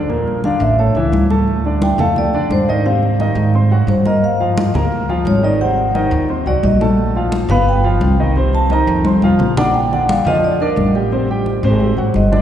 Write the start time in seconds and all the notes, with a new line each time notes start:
Already playing: E2
0.09 A#2 A#3 A#4, high conga
0.27 high conga
0.44 D3 D4 D5 F5, high conga
0.60 A1 E5, high conga
0.79 A3 A4 C#5 A5, high conga
0.95 C#2 E3 E4 E5, high conga
1.12 D2, high conga
1.30 A3 A4 A5, high conga
1.48 high conga
1.65 D3 D4 D5, high conga
1.82 G5, high conga
1.98 F2 A3 A4 F5 A5, low conga
2.16 D5, high conga, low conga
2.34 D3 D4 D5, high conga
2.50 G#2 C5, high conga
2.68 D#3 D#4 D5 D#5, high conga
2.86 C3 C4 C5 F5, high conga
3.03 high conga
3.20 D#3 D#4 D#5, high conga
3.35 G#2, high conga
3.54 C4 C5 C6, high conga
3.71 F#3 F#4 F#5, high conga
3.87 G2 C5, high conga
4.05 A#3 A#4 D#5 A#5, high conga
4.23 F5, high conga
4.40 F3 F4 F5, high conga
4.58 high conga
4.74 D2 A#3 A#4 A#5, low conga
4.92 high conga
5.09 F3 F4 F5, high conga
5.25 G#1 C#5, high conga
5.43 D#3 D#4 D5 D#5, high conga
5.61 C3 C4 C5 F#5, high conga
5.78 high conga
5.95 D#3 D#4 D#5, high conga
6.11 D#2, high conga
6.29 C4 C5 C6, high conga
6.46 C2 F#3 F#4 D5 F#5, high conga
6.63 A#1 D#5, high conga
6.81 A3 A4 A5, high conga
6.99 high conga
7.15 F3 F4 F5, high conga
7.32 high conga
7.49 G1 B3 B4 F5 B5, low conga
7.67 G5, high conga
7.84 F3 F4 F5, high conga
8.01 C2, high conga
8.19 D#3 D#4 D#5, high conga
8.36 C3 C4 C5, high conga
8.53 A5, high conga
8.70 D#3 D#4 D#5 A#5, high conga
8.87 F2, high conga
9.05 C4 C5 C6, high conga
9.22 C2 F3 F4 F5, high conga
9.39 A#1, low conga
9.57 D4 D5 F#5 D6, low conga
9.74 G5, high conga
9.92 D3 D4 D5 F#5, high conga
10.09 F5, high conga
10.25 F2 F3 F4 D#5 F5, low conga
10.43 D5, high conga
10.60 D4 A#4 D5 D6, high conga
10.76 A1, high conga
10.95 G3 G4 G5, high conga
11.12 C3 C4 C5, high conga
11.29 G3 G4 G5, high conga
11.46 high conga
11.63 G#1 C3 C4 C5, high conga
11.80 high conga
11.97 G#1 F#3 F#4 F#5, high conga
12.14 G1 D#5, high conga
12.32 D3 D4 D5, high conga